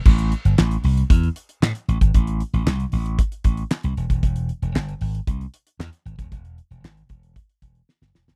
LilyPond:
<<
  \new Staff \with { instrumentName = "Slap bass" } { \clef bass \time 4/4 \key a \minor \tempo 4 = 115 a,,8. g,,16 a,,8 c,8 e,8 r8 a,16 r16 a,,16 gis,,16 | a,,8. a,,16 c,8 a,,8. r16 a,,8 r16 c,16 e,,16 dis,,16 | e,,8. e,,16 g,,8 gis,,8 c,8 r8 e,16 r16 gis,,16 dis,,16 | e,,8. e,,16 gis,,8 e,,8. r16 e,,8 r16 g,,16 e,,16 dis,,16 | }
  \new DrumStaff \with { instrumentName = "Drums" } \drummode { \time 4/4 <cymc bd>16 hh16 hh16 hh16 <hc sn>16 hh16 hho16 hh16 <hh bd>16 hh16 hh16 hh16 <hc sn>16 hh16 hh16 <hh bd>16 | <hh bd>16 hh16 hh16 hh16 <hc sn>16 hh16 hho16 hh16 <hh bd>16 hh16 <hh bd>16 hh16 <hc sn>16 hh16 hh16 <hh bd>16 | <hh bd>16 hh16 hh16 hh16 <hc sn>16 hh16 hho16 hh16 <hh bd>16 hh16 hh16 hh16 <hc sn>16 hh16 hh16 <hh bd>16 | <hh bd>16 hh16 hh16 hh16 <hc sn>16 hh16 <hh bd>16 hh16 <hh bd>16 hh16 <hh bd>16 hh16 sn16 sn16 sn16 sn16 | }
>>